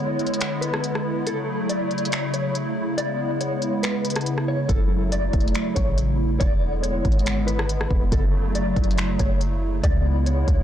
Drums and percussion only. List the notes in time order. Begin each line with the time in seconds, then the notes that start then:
0.19 closed hi-hat
0.26 closed hi-hat
0.34 closed hi-hat
0.41 finger snap, closed hi-hat
0.62 closed hi-hat
0.74 cross-stick
0.84 closed hi-hat
0.95 cross-stick
1.27 closed hi-hat
1.69 closed hi-hat
1.91 closed hi-hat
1.98 closed hi-hat
2.05 closed hi-hat
2.12 finger snap, closed hi-hat
2.34 closed hi-hat
2.55 closed hi-hat
2.98 closed hi-hat
3.41 closed hi-hat
3.62 closed hi-hat
3.83 finger snap, closed hi-hat
4.05 closed hi-hat
4.10 closed hi-hat
4.16 cross-stick, closed hi-hat
4.21 closed hi-hat
4.26 closed hi-hat
4.38 cross-stick
4.69 kick, closed hi-hat
5.12 closed hi-hat
5.33 kick, closed hi-hat
5.40 closed hi-hat
5.48 closed hi-hat
5.55 finger snap, closed hi-hat
5.76 kick, closed hi-hat
5.98 closed hi-hat
6.41 kick, closed hi-hat
6.84 closed hi-hat
7.05 kick, closed hi-hat
7.12 closed hi-hat
7.19 closed hi-hat
7.26 finger snap, closed hi-hat
7.48 closed hi-hat
7.59 cross-stick
7.69 closed hi-hat
7.81 cross-stick
7.91 kick
8.12 kick, closed hi-hat
8.55 closed hi-hat
8.76 kick, closed hi-hat
8.84 closed hi-hat
8.91 closed hi-hat
8.98 finger snap, closed hi-hat
9.19 kick, closed hi-hat
9.41 closed hi-hat
9.84 kick, closed hi-hat
10.26 closed hi-hat
10.48 kick, closed hi-hat